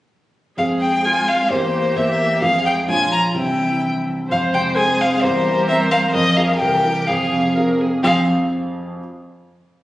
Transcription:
0.57 F2 G#3 C4 G#4 C5 F5
0.81 G5
1.04 F4 G#5
1.28 F5
1.50 E2 A#3 G4 C5
1.96 E2 A#3 G4 C5 E5
2.41 F2 G#3 F4 G#4 C5 F5
2.66 G5
2.87 A#1 F3 F4 C#5 G#5
3.13 A#5
3.34 C2 E3 C4 E4 C5 G5
4.30 F2 G#3 C5 F5
4.54 C3 G5
4.76 C4 G#4 C5 G#5
5.00 C4 F5
5.22 E2 G3 G4 A#4 C5
5.46 E3
5.68 C4 G4 A#4 C5 E5
5.91 C4 F5
6.13 F2 F3 G#4 A#4 D#5
6.36 F4 G#4 F5
6.59 C2 E3 G4 G5
6.85 E4 G4
7.07 F2 F3 G#4 F5
7.33 C3
7.56 C4 F4 G#4 A#4
7.80 C4 G#4
8.03 F2 F3 C4 F4 G#4 F5

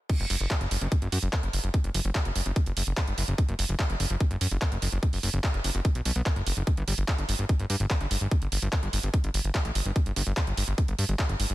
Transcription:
0.10 kick, closed hi-hat, crash
0.20 F#1, closed hi-hat
0.30 F#1, open hi-hat
0.40 F#1, closed hi-hat
0.51 kick, clap, closed hi-hat
0.61 F#1, closed hi-hat
0.71 F#1, open hi-hat
0.81 F#1, closed hi-hat
0.92 kick, closed hi-hat
1.02 F#1, closed hi-hat
1.12 F#2, open hi-hat
1.23 F#1, closed hi-hat
1.33 kick, clap, closed hi-hat
1.43 F#1, closed hi-hat
1.53 F#1, open hi-hat
1.64 F#1, closed hi-hat
1.74 kick, closed hi-hat
1.84 F#1, closed hi-hat
1.94 F#1, open hi-hat
2.05 F#1
2.15 kick, clap, closed hi-hat
2.25 F#1, closed hi-hat
2.36 F#1, open hi-hat
2.46 F#1, closed hi-hat
2.56 kick, closed hi-hat
2.66 F#1, closed hi-hat
2.77 F#1, open hi-hat
2.87 F#1, closed hi-hat
2.97 kick, clap, closed hi-hat
3.07 G1, closed hi-hat
3.18 F#1, open hi-hat
3.28 F#1, closed hi-hat
3.38 kick, closed hi-hat
3.49 F#1, closed hi-hat
3.59 F#1, open hi-hat
3.69 F#1, closed hi-hat
3.79 kick, clap, closed hi-hat
3.90 F#1, closed hi-hat
4.00 F#1, open hi-hat
4.10 F#1, closed hi-hat
4.20 kick, closed hi-hat
4.31 F#1, closed hi-hat
4.41 F#2, open hi-hat
4.51 F#1, closed hi-hat
4.62 kick, clap, closed hi-hat
4.72 F#1, closed hi-hat
4.82 F#1, open hi-hat
4.92 F#1, closed hi-hat
5.03 kick, closed hi-hat
5.13 F#1, open hi-hat
5.23 F#1, open hi-hat
5.33 F#1, closed hi-hat
5.44 kick, clap, closed hi-hat
5.54 F#1, closed hi-hat
5.64 F#1, open hi-hat
5.75 F#1, closed hi-hat
5.85 kick, closed hi-hat
5.95 B1, closed hi-hat
6.05 B1, open hi-hat
6.16 B1, closed hi-hat
6.26 kick, clap, closed hi-hat
6.36 F#1, closed hi-hat
6.46 F#1, open hi-hat
6.57 F#1, closed hi-hat
6.67 kick, closed hi-hat
6.77 G1, closed hi-hat
6.88 G1, open hi-hat
6.98 G1, closed hi-hat
7.08 kick, clap, closed hi-hat
7.18 G1, closed hi-hat
7.29 G1, open hi-hat
7.39 G1, closed hi-hat
7.49 kick, closed hi-hat
7.60 G1, closed hi-hat
7.70 G2, open hi-hat
7.80 G1, closed hi-hat
7.90 kick, clap, closed hi-hat
8.01 G1, closed hi-hat
8.11 G1, open hi-hat
8.21 G1, closed hi-hat
8.31 kick, closed hi-hat
8.42 G1, closed hi-hat
8.52 G1, open hi-hat
8.62 G1, closed hi-hat
8.73 kick, clap, closed hi-hat
8.83 G1, closed hi-hat
8.93 G1, open hi-hat
9.03 G1, closed hi-hat
9.14 kick, closed hi-hat
9.24 G1, closed hi-hat
9.34 G1, open hi-hat
9.44 G1, closed hi-hat
9.55 kick, clap, closed hi-hat
9.65 A1, closed hi-hat
9.75 G1, open hi-hat
9.85 G1, closed hi-hat
9.96 kick, closed hi-hat
10.06 G1, closed hi-hat
10.16 G1, open hi-hat
10.27 G1, closed hi-hat
10.37 kick, clap, closed hi-hat
10.47 G1, closed hi-hat
10.57 G1, open hi-hat
10.68 G1, closed hi-hat
10.78 kick, closed hi-hat
10.88 G1, closed hi-hat
10.98 G2, open hi-hat
11.09 G1, closed hi-hat
11.19 kick, clap, closed hi-hat
11.29 G1, closed hi-hat
11.40 G1, open hi-hat
11.50 G1

